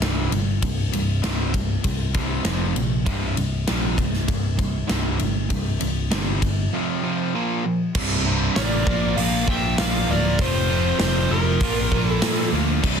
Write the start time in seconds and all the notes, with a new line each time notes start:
0.00 C1 C2 G2 C3, snare, ride
0.32 G1 C2 G2, ride
0.62 C1 C2 G2, kick, ride
0.92 C1 C2 G2, ride
1.22 C1 C2 G2 C3, snare, ride
1.54 C2 G2, kick, ride
1.83 C2 G2, kick, ride
2.14 C2 G2 C3, kick, ride
2.44 F1 F2 C3 F3, snare, ride
2.75 A#1 F2 C3, ride
3.06 C1 C2 G2 C3, kick, ride
3.36 C1 C2 G2, ride
3.67 A#1 C2 G2 C3, snare, ride
3.98 C1 C2 G2, kick, ride
4.14 snare
4.28 C1 C2 G2, kick, ride
4.58 C2 G2, kick, ride
4.88 C1 C2 G2 C3, snare, ride
5.19 G1 C2 G2, ride
5.50 C1 C2 G2, kick, ride
5.81 C1 C2 G2, ride
6.11 G1 C2 G2 C3, snare, ride
6.42 C2 G2, kick, ride
6.73 F2 C3 F3
7.03 F2 C3 F3
7.35 A#2 F3 A#3
7.65 A#2 F3
7.95 C1 C2 G2 C3 G3, kick, crash
7.99 E4
8.26 C2 G2 C3
8.56 A1 C2 G2 C3 A#4 D5, snare, open hi-hat
8.87 A#1 A#2 F3 A#3 D4, kick
8.91 F4 A#4
9.16 A#1 A#2 F3 A#3 D5 F5, open hi-hat
9.48 A#1 A#2 F3 A#3 E5 G5, kick
9.78 A#1 A#2 F3 A#3 D5 F5, snare, open hi-hat
10.09 D1 A#2 F3 A#3 A#4 D5
10.39 F1 F2 C3 F3 A3 C4 F4 C5, kick, open hi-hat
10.43 F4
10.70 F2 C3 F3
10.99 F1 F2 C3 F3 F4 C5, snare, open hi-hat
11.31 F1 F2 C3 F3 F4 A#4
11.60 A#1 A#2 F3 A#3 D4 F4, kick, open hi-hat
11.64 A#4
11.91 A#1 A#2 F3 A#3, kick
12.08 E4 A4
12.22 A#2 F3 A#3, snare, open hi-hat
12.52 D2 A#2 F3 A#3
12.83 C1 C2 G2 C3 G3 E4, kick, crash